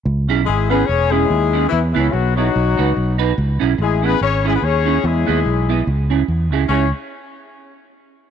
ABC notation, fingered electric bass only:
X:1
M:4/4
L:1/8
Q:"Swing" 1/4=145
K:C#m
V:1 name="Fingered electric bass" clef=bass
C,, B,,, G,,,2 E,,,2 D,,2 | E,, C,, B,,,2 B,,, C,, B,,,2 | C,, B,,, A,,,2 G,,,2 D,,2 | E,, D,, B,,,2 C,,2 E,, C,, |
C,, z6 z |]